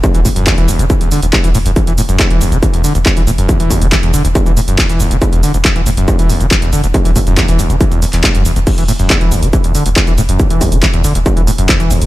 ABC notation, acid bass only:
X:1
M:4/4
L:1/16
Q:1/4=139
K:Dmix
V:1 name="Acid bass" clef=bass
E,, E, A,, F,, E,, E, D,, E, E, E,, D, D,, E,, E, A,, F,, | E,, E, A,, F,, E,, E, D,, E, E, E,, D, D,, E,, E, A,, F,, | E,, E, D,, E, E, E,, D, D,, E,, E, A,, F,, E,, E, D,, E, | E, E,, D, D,, E,, E, A,, F,, E,, E, D,, E, E, E,, D, D,, |
E,, E, A,, F,, E,, E, D,, E, E, E,, E,, E,, A,, F,, E,, E,, | E,, E, A,, F,, E,, E, D,, E, E, E,, D, D,, E,, E, A,, F,, | E,, E, D,, E, E, E,, D, D,, E,, E, A,, F,, E,, E, D,, E, |]